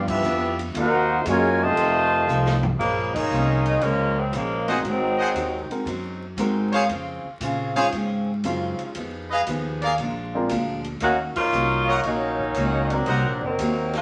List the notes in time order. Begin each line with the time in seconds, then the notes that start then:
Already playing: G2 B3 D4
0.07 F3 B3 D4 E4 G4 B4 E5, kick, crash
0.22 F2 G2 F3 B3 D4, hi-hat pedal
0.59 ride
0.74 D#2 C3 F#3 A#3 D#4 F#4 A#4 C5 F#5, ride
1.25 F#2 C3 F#3 G#3 A#3 D#4 F4 G#5, hi-hat pedal, ride
1.30 A#4 C#5
1.61 C3 D#3 A3 F4 C5 D#5 A5
1.77 F3 C4 D#4 A4, ride
2.27 C2 F3 C4 D#4 A4, hi-hat pedal
2.46 snare
2.63 floor tom
2.80 A#1 A#2 C#3 F3 G#3 A#3 C#4, kick, crash
3.14 G#3 A#3 C#4 D#4, kick, crash
3.30 C2 A#2 F3 G#3 C#4, hi-hat pedal
3.66 ride
3.81 C#2 A#2 F3 G#3 A#3 C#4, ride
3.86 C#4
4.18 C#3 F3 G#3 C4
4.32 A#1 A#2 C#3 F3 G#3 A#3 C#4, hi-hat pedal, ride
4.68 A#2 C#3 F3 G#3 C4 D#4 F#4 G#4 A#4 C5 D#5 F#5, snare, ride
4.83 G#1 G#2 F#3 C4 D#4, ride
4.88 D#3 F#3 G#3 C4
5.19 G#4 C5 D#5 F#5
5.34 D#2 G#2 F#3 C4 D#4, hi-hat pedal, ride
5.69 G#3 C4 D#4 F#4 A#4, muted upright bass stroke, ride
5.85 F#2 G#2 F#3 C4 D#4, ride
6.37 G#2 F#3 G#3 C4 D#4 F#4 A#4, hi-hat pedal, ride
6.72 G#4 C5 C#5 F5, ride
6.89 F2 C#3 C4 F4, ride
6.93 G#4
7.24 muted upright bass stroke
7.40 A#2 C#3 C4 F4, hi-hat pedal, ride
7.45 G#4
7.75 G#3 C#4 D#4 F4 G#4 C5 C#5 F5, ride
7.92 G#2 C#3 C4 F4, ride
7.97 G#4
8.44 F#2 C#3 G#3 C4 C#4 D#4 F4 D#5, hi-hat pedal, ride
8.48 G#4
8.79 muted upright bass stroke, ride
8.95 F2 F3 B3 D#4, ride
8.99 G#4
9.31 G#4 B4 D#5 F5
9.47 D#2 F3 B3 D#4, hi-hat pedal, ride
9.51 G#4
9.82 G#4 A#4 D5 F5, ride
9.98 A#1 A#2 F3 G#3, ride
10.03 D4
10.35 G#3 C4 D4 F4 A#4
10.49 D2 A#2 F3 G#3 D4, hi-hat pedal, ride
10.84 ride
11.00 D#2 D#3 A#3 C#4 F#4, snare, ride
11.36 A#3 C#4 D#4 F4, muted upright bass stroke, kick, crash
11.52 C2 D#3 A#3 C#4 F#4, hi-hat pedal
11.88 A#4 C#5 D#5 F#5
12.03 A#1 D#3 F#3 A#3 C#4 D#4, ride
12.08 F#4
12.39 kick
12.54 C#2 D#3 A#3 C#4 F#4, hi-hat pedal, ride
12.90 F#3 A#3 C4 D4 D#4 A#4, ride
13.06 C2 C3 F#3 A#3 A#4 C5 D#5 F#5, ride
13.10 D#4
13.24 A#1
13.41 F#1 A#3
13.45 D#3 F#3 C4
13.58 D#2 C3 F#3 A#3, hi-hat pedal, ride
13.63 D#4
13.93 F#3 A#3 D4, snare, ride
13.97 F4